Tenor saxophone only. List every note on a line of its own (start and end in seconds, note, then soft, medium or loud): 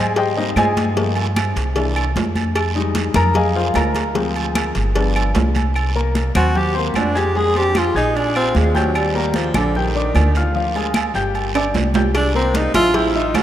6.36 6.59 F#4 loud
6.57 6.76 G4 loud
6.78 6.99 A#3 medium
6.98 7.19 D4 medium
7.17 7.39 G4 loud
7.37 7.56 G#4 loud
7.58 7.79 G4 loud
7.78 7.96 F4 medium
7.97 8.17 D#4 medium
8.16 8.35 D4 medium
8.36 8.58 C4 medium
8.57 8.76 G#3 medium
8.77 8.98 F#3 medium
8.96 9.37 G3 loud
9.35 9.55 F3 medium
9.57 9.78 D3 loud
9.77 10.56 D#3 medium
12.17 12.34 D4 medium
12.35 12.57 C4 medium
12.56 12.74 D#4 medium
12.75 12.97 F4 loud
12.95 13.18 E4 loud
13.16 13.38 D#4 medium
13.37 13.43 F#4 medium